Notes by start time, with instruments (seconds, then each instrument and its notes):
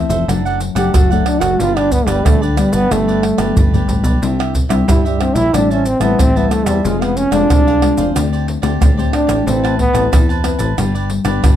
Already playing: nylon-string guitar E3 A3 C4 E4, cavaquinho A4
0.09 analog synth bass F1, cavaquinho A4 C5 E5, pandeiro, maracas
0.28 analog synth bass F#1, nylon-string guitar F#2 F#3 A3 D4, cavaquinho D4 A4 D5 F#5, pandeiro, tamborim, maracas, surdo
0.45 cavaquinho A4 D5 F#5, pandeiro, maracas
0.60 muted cavaquinho stroke, pandeiro, maracas
0.75 analog synth bass F#1, nylon-string guitar F#3 A3 D4, trombone G4, cavaquinho A4 D5 F#5, pandeiro, tamborim, maracas
0.93 analog synth bass F#1, nylon-string guitar F#2, cavaquinho D4 A4 D5 F#5, trombone F#4, pandeiro, tamborim, maracas, surdo
1.10 nylon-string guitar F#3 A3 D4, trombone A3, cavaquinho A4 D5 F#5, pandeiro, maracas
1.26 trombone D4, pandeiro, tamborim
1.40 analog synth bass F#1, trombone F#4, cavaquinho A4 D5 F#5, pandeiro, tamborim, maracas
1.59 analog synth bass G1, nylon-string guitar G2 G3 B3 D4, cavaquinho D4 G4 B4 D5, trombone F4, pandeiro, maracas, surdo
1.76 trombone D4, cavaquinho G4 B4 D5, pandeiro, tamborim, maracas
1.91 trombone B3, muted cavaquinho stroke, pandeiro, maracas, surdo
2.06 analog synth bass G1, nylon-string guitar G3 B3 D4, trombone G3, cavaquinho G4 B4 D5, pandeiro, tamborim, maracas
2.25 analog synth bass D2, nylon-string guitar D3, trombone A3, cavaquinho D4 G4 B4 D5, pandeiro, tamborim, maracas, surdo
2.42 trombone D3, cavaquinho G4 B4 D5, pandeiro, maracas
2.57 nylon-string guitar G3 B3 D4, trombone G3, pandeiro, tamborim, maracas
2.72 analog synth bass G1, trombone B3, cavaquinho G4 B4 D5, pandeiro, maracas
2.90 analog synth bass G1, nylon-string guitar G2 G3 B3 D4, trombone A3, cavaquinho D4 G4 B4 D5, pandeiro, tamborim, maracas, surdo
3.08 cavaquinho G4 B4 D5, pandeiro, maracas
3.23 pandeiro, tamborim
3.38 analog synth bass G1, nylon-string guitar G3 B3 D4, cavaquinho G4 B4 D5, pandeiro, tamborim, maracas
3.56 analog synth bass G1, nylon-string guitar D3, cavaquinho D4 G4 B4 D5, surdo, pandeiro, maracas
3.73 nylon-string guitar G3 B3 D4, cavaquinho G4 B4 D5, surdo, pandeiro, maracas
3.88 analog synth bass A1, pandeiro, maracas, surdo
4.03 analog synth bass B1, cavaquinho G4 B4 D5, pandeiro, maracas, surdo
4.22 analog synth bass C2, nylon-string guitar C3 G3 D4 E4, cavaquinho D4 G4 C5 E5, pandeiro, maracas, surdo
4.39 cavaquinho G4 C5 E5, pandeiro, tamborim, maracas
4.54 muted cavaquinho stroke, pandeiro, maracas, surdo
4.69 analog synth bass C2, nylon-string guitar G3 D4 E4, cavaquinho G4 C5 E5, pandeiro, tamborim, maracas
4.88 analog synth bass G2, nylon-string guitar G3, cavaquinho D4 G4 C5 E5, trombone E4, pandeiro, tamborim, maracas, surdo
5.05 trombone G3, cavaquinho G4 C5 E5, pandeiro, maracas
5.20 nylon-string guitar G3 D4 E4, trombone C4, pandeiro, tamborim
5.35 analog synth bass A#1, trombone E4, cavaquinho G4 C5 E5, pandeiro, maracas
5.53 analog synth bass A1, nylon-string guitar A2 G3 C4 E4, trombone D4, cavaquinho G4 C5 E5 A5, pandeiro, tamborim, maracas, surdo
5.70 trombone C#4, cavaquinho C5 E5 A5, pandeiro, maracas
5.85 trombone C4, muted cavaquinho stroke, pandeiro, maracas
6.00 analog synth bass A1, nylon-string guitar G3 C4 E4, trombone B3, cavaquinho C5 E5 A5, pandeiro, tamborim, maracas
6.19 analog synth bass A1, nylon-string guitar E3, trombone C4, cavaquinho G4 C5 E5 A5, pandeiro, tamborim, maracas, surdo
6.36 nylon-string guitar G3 C4 E4, trombone B3, cavaquinho C5 E5 A5, pandeiro, maracas
6.51 trombone A3, pandeiro, tamborim, maracas
6.66 analog synth bass E2, trombone G3, cavaquinho C5 E5 A5, pandeiro, tamborim, maracas
6.84 analog synth bass F1, nylon-string guitar F3 G#3 C4 F4, trombone G#3, cavaquinho F4 G#4 C5 F5, pandeiro, maracas, surdo
7.01 trombone B3, cavaquinho G#4 C5 F5, pandeiro, tamborim, maracas
7.17 trombone C#4, muted cavaquinho stroke, pandeiro, maracas
7.31 analog synth bass F1, nylon-string guitar G#3 C4 F4, trombone D4, cavaquinho G#4 C5 F5, pandeiro, tamborim, maracas
7.50 analog synth bass C2, nylon-string guitar C3, cavaquinho F4 G#4 C5 F5, pandeiro, tamborim, maracas, surdo
7.67 cavaquinho G#4 C5 F5, pandeiro, maracas
7.82 nylon-string guitar G#3 C4 F4, pandeiro, tamborim
7.97 analog synth bass F1, cavaquinho G#4 C5 F5, pandeiro, maracas
8.15 analog synth bass D2, nylon-string guitar D3 A3 C4 G4, cavaquinho D4 G4 C5 D5, pandeiro, tamborim, maracas, surdo
8.32 cavaquinho G4 C5 D5, pandeiro, maracas
8.47 muted cavaquinho stroke, pandeiro
8.62 analog synth bass D2, nylon-string guitar A3 C4 G4, cavaquinho G4 C5 D5, pandeiro, tamborim, maracas
8.81 analog synth bass D2, nylon-string guitar A2, cavaquinho G4 C5 D5, pandeiro, tamborim, maracas, surdo
8.97 nylon-string guitar A3 C4 G4, cavaquinho G4 C5 D5, pandeiro, maracas
9.13 trombone D4, pandeiro, tamborim
9.27 analog synth bass A1, cavaquinho G4 C5 D5, pandeiro, tamborim, maracas
9.46 analog synth bass A1, nylon-string guitar A3 C4 E4 B4, trombone C4, cavaquinho A4 B4 C5 A5, pandeiro, maracas, surdo
9.63 cavaquinho B4 C5 A5, pandeiro, tamborim, maracas
9.79 trombone B3, muted cavaquinho stroke, pandeiro, surdo
9.93 analog synth bass A1, nylon-string guitar C4 E4 B4, cavaquinho B4 C5 A5, pandeiro, tamborim, maracas
10.12 analog synth bass E2, nylon-string guitar E3, cavaquinho A4 B4 C5 A5, pandeiro, tamborim, maracas, surdo
10.29 cavaquinho B4 C5 A5, pandeiro, maracas
10.43 nylon-string guitar C4 E4 B4, pandeiro, tamborim, maracas
10.59 analog synth bass A1, cavaquinho B4 C5 A5, pandeiro, maracas
10.78 analog synth bass G1, nylon-string guitar G2 G3 B3 D4, cavaquinho D4 G4 B4 D5, pandeiro, tamborim, maracas, surdo
10.95 cavaquinho G4 B4 D5, pandeiro, maracas
11.10 muted cavaquinho stroke, pandeiro
11.24 analog synth bass G1, nylon-string guitar G3 B3 D4, cavaquinho G4 B4 D5, pandeiro, tamborim, maracas
11.42 analog synth bass G1, nylon-string guitar D3, cavaquinho D4 G4 B4 D5, pandeiro, tamborim, maracas, surdo